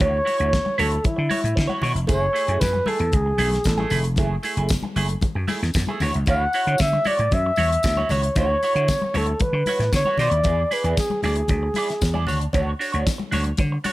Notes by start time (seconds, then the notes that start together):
0.00 D2 E4 F#4 C#5, kick, closed hi-hat, low conga
0.25 E4 F#4 C#5, open hi-hat, muted conga
0.38 D2 E4 F#4 C#5, closed hi-hat
0.53 kick, snare, closed hi-hat, high conga
0.65 muted clean electric guitar stroke, high conga
0.78 D2 E4 F#4 A4 C#5, open hi-hat, high conga
0.92 muted clean electric guitar stroke, closed hi-hat
1.04 E4, muted clean electric guitar stroke, muted slap bass stroke, kick, closed hi-hat, muted conga, high conga, low conga
1.17 D3, muted clean electric guitar stroke
1.30 E4 F#4 C#5, open hi-hat, high conga
1.42 A2, muted clean electric guitar stroke, closed hi-hat
1.55 D3, muted clean electric guitar stroke, kick, closed hi-hat
1.59 snare
1.67 E4 F#4 C#5, high conga
1.81 B2 E4 F#4 C#5, open hi-hat, low conga
1.94 F1, muted clean electric guitar stroke, closed hi-hat
2.07 F#1 A3 E4 G#4 C#5, kick, closed hi-hat, tambourine, low conga
2.33 A3 E4 G#4, open hi-hat, tambourine
2.47 F#2 A3 E4 G#4, closed hi-hat
2.60 F#2 B4, kick, snare, closed hi-hat, tambourine, high conga
2.73 muted clean electric guitar stroke, high conga
2.86 A3 E4 G#4 A4, open hi-hat, muted conga, high conga
2.99 E2, muted clean electric guitar stroke, closed hi-hat
3.12 C#2 G#4, muted clean electric guitar stroke, kick, closed hi-hat, high conga, low conga
3.26 muted clean electric guitar stroke
3.38 B1 A3 E4 G#4, open hi-hat, tambourine, muted conga, high conga
3.51 muted clean electric guitar stroke, snare, closed hi-hat
3.64 A1 A4, muted clean electric guitar stroke, kick, snare, closed hi-hat, tambourine, muted conga
3.78 A3 E4 G#4, high conga
3.90 F1 A3 E4 G#4, open hi-hat, tambourine, low conga
4.04 muted clean electric guitar stroke, closed hi-hat
4.16 F#1 A3 E4 G#4, kick, closed hi-hat, tambourine, low conga
4.43 A3 E4 G#4, open hi-hat, tambourine, muted conga
4.56 F#1 A3 E4 G#4, closed hi-hat
4.69 kick, snare, closed hi-hat, tambourine, high conga
4.83 muted clean electric guitar stroke, high conga
4.96 F#1 A3 E4 G#4, open hi-hat, tambourine, muted conga, high conga
5.09 muted clean electric guitar stroke, closed hi-hat
5.21 muted clean electric guitar stroke, muted slap bass stroke, kick, closed hi-hat, tambourine, high conga, low conga
5.35 F#2, muted clean electric guitar stroke
5.48 A3 E4 G#4, open hi-hat, tambourine, muted conga, high conga
5.62 E2, muted clean electric guitar stroke, snare, closed hi-hat
5.74 F#2, muted clean electric guitar stroke, kick, snare, closed hi-hat, tambourine
5.87 A3 E4 G#4, high conga
6.00 D2 E4 F#4 C#5, open hi-hat, tambourine, muted conga, low conga
6.14 C#2, muted clean electric guitar stroke, closed hi-hat
6.26 D2 E4 F#4 C#5 F#5, kick, closed hi-hat, tambourine, low conga
6.53 E4 F#4 C#5, open hi-hat, tambourine
6.67 D3 E4 F#4 C#5, closed hi-hat
6.78 D3 E5, kick, snare, closed hi-hat, tambourine, muted conga, high conga
6.93 muted clean electric guitar stroke, high conga
7.04 E4 F#4 C#5 D5, open hi-hat, tambourine, high conga
7.19 A2, muted clean electric guitar stroke, closed hi-hat
7.31 F#2 E5, muted clean electric guitar stroke, kick, closed hi-hat, high conga, low conga
7.46 muted clean electric guitar stroke
7.56 E2 E4 F#4 C#5, open hi-hat, tambourine, muted conga, high conga
7.71 muted clean electric guitar stroke, closed hi-hat
7.83 D2, muted clean electric guitar stroke, kick, snare, closed hi-hat, tambourine
7.97 E4 F#4 C#5, high conga
8.09 C#2 E4 F#4 C#5, open hi-hat, tambourine, low conga
8.23 muted clean electric guitar stroke, closed hi-hat
8.35 D2 E4 F#4 C#5, kick, closed hi-hat, tambourine, muted conga, low conga
8.62 E4 F#4 C#5, open hi-hat, tambourine, muted conga
8.75 D3 E4 F#4 C#5, closed hi-hat
8.88 kick, snare, closed hi-hat, tambourine, high conga
9.02 muted clean electric guitar stroke, high conga
9.14 D2 E4 F#4 A4 C#5, open hi-hat, tambourine, muted conga, high conga
9.26 muted clean electric guitar stroke, closed hi-hat
9.40 B4, muted slap bass stroke, muted clean electric guitar stroke, kick, closed hi-hat, muted conga, high conga, low conga
9.53 D3, muted clean electric guitar stroke
9.66 E4 F#4 C#5, open hi-hat, tambourine, high conga
9.79 A2, muted clean electric guitar stroke, snare, closed hi-hat
9.92 D3 C#5, muted clean electric guitar stroke, kick, snare, closed hi-hat, tambourine, muted conga
10.05 E4 F#4 C#5, high conga
10.18 B2 E4 F#4 C#5 D5, open hi-hat, tambourine, muted conga, low conga
10.31 D#2, muted clean electric guitar stroke, closed hi-hat
10.44 E2 E4 G#4 D5, kick, closed hi-hat, tambourine, muted conga, low conga
10.71 E4 G#4 B4 D5, open hi-hat, tambourine, muted conga
10.84 E2 E4 G#4 D5, closed hi-hat
10.97 G#4, kick, snare, closed hi-hat, tambourine, muted conga, high conga
11.10 muted clean electric guitar stroke, high conga
11.23 D2 E4 G#4 D5, open hi-hat, tambourine, muted conga, high conga
11.36 muted clean electric guitar stroke, closed hi-hat
11.48 D2, muted clean electric guitar stroke, kick, closed hi-hat, high conga, low conga
11.63 muted clean electric guitar stroke
11.74 E4 G#4, open hi-hat, tambourine, high conga
11.78 D5
11.89 muted clean electric guitar stroke, snare, closed hi-hat
12.01 E2, muted clean electric guitar stroke, kick, snare, closed hi-hat, tambourine, muted conga
12.14 E4 G#4 D5, high conga
12.27 D2 D4 F#4 C#5, open hi-hat, tambourine, muted conga, low conga
12.40 muted clean electric guitar stroke, closed hi-hat
12.53 D2 D4 F#4 C#5, kick, closed hi-hat, tambourine, low conga
12.79 D4 F#4 C#5, open hi-hat, tambourine
12.92 D2 D4 F#4 C#5, closed hi-hat
13.06 kick, snare, closed hi-hat, tambourine, high conga
13.18 muted clean electric guitar stroke, high conga
13.31 D2 D4 F#4 C#5, open hi-hat, tambourine, muted conga, high conga
13.44 muted clean electric guitar stroke, closed hi-hat
13.57 D3, muted clean electric guitar stroke, kick, closed hi-hat, tambourine, muted conga, high conga, low conga
13.72 muted clean electric guitar stroke
13.84 D4 F#4 C#5, open hi-hat, tambourine, muted conga, high conga